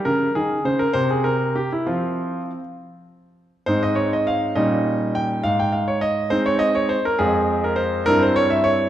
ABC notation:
X:1
M:6/8
L:1/16
Q:3/8=68
K:Fm
V:1 name="Grand piano"
B2 A2 c B c A B2 G =E | F6 z6 | [K:Ab] c e d e f2 e4 g2 | f g f d e2 c d e d c B |
A3 B c2 B c d =e d2 |]
V:2 name="Grand piano" clef=bass
D,2 E,2 D,2 C,6 | [F,C]6 z6 | [K:Ab] [A,,A,CE]6 [B,,G,DE]6 | A,,6 [A,CE]6 |
[F,,A,CF]6 [G,,G,C=E]6 |]